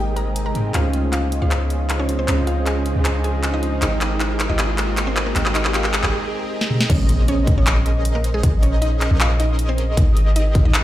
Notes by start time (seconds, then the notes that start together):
Already playing: G#1 C3 G#3 A#3 C4 D#4 G4 G#4 A#4 D#5 G5, riser
0.16 A#4 A#5, closed hi-hat
0.36 closed hi-hat
0.46 A#4 A#5
0.54 G#2 G#3 C4 D#4 G4 G#4 A#4 D#5, closed hi-hat
0.72 C#2 C#3 F3 G#3 C#4 D#4 F4 G#4 C5 D#5 F5, clap, closed hi-hat
0.93 closed hi-hat
1.12 F4 F5, clap, closed hi-hat
1.32 closed hi-hat
1.42 C#2 C#4 F4 G#4 C5 D#5 F5
1.51 clap, closed hi-hat
1.70 closed hi-hat
1.90 clap, closed hi-hat
1.99 C#4 C#5
2.08 G#3 C#4 D#4 F4 C5, closed hi-hat
2.19 C4 C5
2.26 C#2 G#3 C#4 D#4 F4 G#4 C5 D#5, clap, closed hi-hat
2.47 F4 F5, closed hi-hat
2.66 G#4 G#5, clap, closed hi-hat
2.86 closed hi-hat
2.96 C#2 C#4 F4 G#4 C5 D#5
3.05 G#4 G#5, clap, closed hi-hat
3.24 G#4 G#5, closed hi-hat
3.43 clap, closed hi-hat
3.54 D#4 D#5
3.62 G#3 C#4 D#4 F4 C5, closed hi-hat
3.80 G#1 C3 G#3 A#3 C4 D#4 G4 G#4 A#4 D#5 G5, clap, closed hi-hat
3.84 A#4
4.01 clap, closed hi-hat
4.20 D#4 D#5, clap, closed hi-hat
4.40 clap, closed hi-hat
4.49 G#1 C4 D#4 G4 G#4 A#4 D#5
4.59 clap, closed hi-hat
4.78 clap, closed hi-hat
4.97 clap, closed hi-hat
5.07 C4 C5
5.15 G#3 C4 D#4 G4 A#4, clap, closed hi-hat
5.26 A#3 A#4
5.34 G#1 G#3 C4 D#4 G4 G#4 A#4 D#5 G5, clap, closed hi-hat
5.38 A#4
5.46 clap, high woodblock
5.55 D#4 D#5, clap, closed hi-hat
5.65 clap
5.74 F4 F5, clap, closed hi-hat
5.84 clap
5.94 clap, closed hi-hat
6.03 G#1 C4 G4 G#4 A#4 D#5, clap
6.61 snare
6.70 C4 G4 G#4 A#4 D#5, mid tom
6.81 snare
6.89 A#1 C#4 G#4 A#4 C5 C#5 D#5, kick, closed hi-hat, crash, impact
7.09 closed hi-hat
7.28 C#4 C#5, closed hi-hat
7.47 kick, closed hi-hat
7.57 A#1 C#4 G#4 A#4 C5 C#5 D#5
7.67 clap, closed hi-hat
7.86 closed hi-hat
8.05 closed hi-hat
8.15 A#3 A#4
8.24 closed hi-hat
8.34 G#3 G#4
8.43 A#1 C#4 G#4 A#4 D#5, kick, closed hi-hat
8.62 C#4 C#5, closed hi-hat
8.82 D#4 D#5, closed hi-hat
9.01 clap, closed hi-hat
9.11 A#1 C#4 G#4 A#4 C5 D#5
9.20 F4 F5, clap, closed hi-hat
9.40 D#4 D#5, closed hi-hat
9.59 closed hi-hat
9.69 C4 C5
9.78 closed hi-hat
9.97 G#1 C4 D#4 D#5, kick, closed hi-hat
10.17 closed hi-hat
10.36 D#4 D#5, closed hi-hat
10.55 kick, closed hi-hat
10.65 G#1 C4 D#4 G4 G#4 A#4 D#5
10.74 clap, closed hi-hat